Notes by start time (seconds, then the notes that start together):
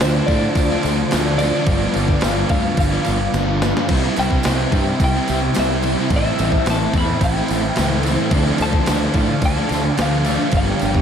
Already playing: F4 C5 D5 A5
0.00 D2 D3 F3 D4 F4 C5, snare, tambourine, crash
0.04 A3 D4
0.15 muted overdriven electric guitar stroke
0.27 A2 D3 A3 D4 D5, kick, tambourine, crash
0.31 F3 A3 D4 F4
0.44 muted overdriven electric guitar stroke
0.55 D2 D3 A3 D4, kick, tambourine, crash
0.70 A3 D4 F4
0.75 F3
0.83 D2 D3 F3 A3 F4, tambourine, crash
0.88 D4
1.00 muted overdriven electric guitar stroke
1.11 D2 D3 D4 F4, snare, tambourine, crash
1.15 F3 A3 D4
1.38 D3 F3 F4 D5, tambourine, crash
1.43 A3 D4
1.54 A3 D4 F4
1.58 F3
1.67 G1 G2 D3 F3 G3 B3 D4 F4 B4 G5, kick, tambourine, crash
1.93 G1 G2 D3 G3, tambourine, crash
1.98 F3 B3 D4
2.08 kick
2.21 G1 G2 D3 G3 F4, snare, tambourine, crash
2.25 F3 B3 D4
2.37 muted overdriven electric guitar stroke
2.48 D2 G2 D3 G3 F4 F5, kick, crash
2.52 F3 B3 D4, tambourine
2.64 muted overdriven electric guitar stroke
2.76 G1 G2 D3 G3 F5, kick, crash
2.80 tambourine
2.91 F3 B3 D4 F4
3.05 G1 G2 D3 F3 G3 B3 D4 F4, tambourine, crash
3.20 muted overdriven electric guitar stroke
3.33 G1 G2 D3 F3 G3 B3 D4 F4, snare, tambourine
3.61 G2 D3 F3 G3 B3 D4 F4, snare, tambourine
3.76 F3 B3 D4 F4, snare
3.88 C2 C3 G3 C4 E4, kick, crash
3.93 E4 C5
4.16 C2 C3 G3 C4 E4 G5, tambourine, crash
4.31 kick
4.43 C2 C3 G3 C4, snare, tambourine, crash
4.48 E4
4.59 muted overdriven electric guitar stroke
4.72 G2 C3 G3 C4 E4, kick, tambourine, crash
4.87 muted overdriven electric guitar stroke
5.00 C2 C3 G3 C4, kick, tambourine, crash
5.04 G5
5.13 C4 E4
5.17 G3
5.27 C2 C3 G3 C4 E4, tambourine, crash
5.43 muted overdriven electric guitar stroke
5.54 C3 G3 C4 E4, snare, tambourine, crash
5.58 C2 E5
5.82 C3 G3 C4 E4, tambourine, crash
5.97 G3 C4 E4
6.10 A1 A2 E3 A3 C4 E4 A4, kick, crash
6.16 E5
6.37 A1 A2 E3 A3 C4 E4, tambourine, crash
6.52 kick
6.66 A1 A2 E3 A3 C4 E4, snare, tambourine, crash
6.70 A5
6.79 muted overdriven electric guitar stroke
6.94 E2 A2 E3 A3 C4 E4, kick, tambourine, crash
6.98 B5
7.09 muted overdriven electric guitar stroke
7.21 A1 A2 E3 A3 G5, kick, tambourine, crash
7.36 A3 C4 E4
7.48 A1 A2 E3 A3, tambourine, crash
7.53 C4 E4
7.63 muted overdriven electric guitar stroke
7.75 C#2 A2 E3 A3 C4 E4, snare, tambourine, crash
8.03 A2 E3 A3 C4 E4, tambourine, crash
8.18 A3 C4 E4
8.31 D2 D3 F3 A3 D4 F5, kick, crash
8.58 D2 D3 F3 A3 D4, tambourine, crash
8.62 A5
8.73 kick
8.86 D2 D3 F3 A3 D4, snare, tambourine, crash
9.02 muted overdriven electric guitar stroke
9.14 A2 D3 F3 A3, kick, tambourine, crash
9.18 D4
9.29 muted overdriven electric guitar stroke
9.41 D2 D3 A3 D4, kick, tambourine, crash
9.46 A5
9.57 F3 A3 D4
9.69 D2 D3 A3 D4, tambourine, crash
9.74 F3 A3 D4
9.86 G5, muted overdriven electric guitar stroke
9.97 D2 D3 F3 A3, snare, tambourine, crash
10.01 D4 F5
10.24 D3 A3 D4, tambourine, crash
10.28 F3 A3 D4
10.38 F3 A3 D4
10.52 G1 G2 D3 F3 G3 G4 B4, kick, tambourine, crash
10.56 B3 D4 G5
10.80 G1 G2 D3 F3 G3 B3 D4, tambourine, crash
10.95 kick